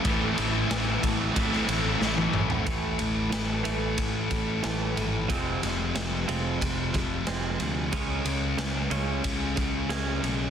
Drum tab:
RD |x-x-x-x-x-x-----|x-x-x-x-x-x-x-x-|x-x-x-x-x-x-x-x-|x-x-x-x-x-x-x-x-|
SD |----o----o--o---|----o-------o---|--o-o-------o---|----o-------o---|
T1 |-------------o--|----------------|----------------|----------------|
T2 |--------------o-|----------------|----------------|----------------|
FT |---------------o|----------------|----------------|----------------|
BD |o-----o-o-------|o-------o-o-----|o-------o-o-----|o-------o-o-----|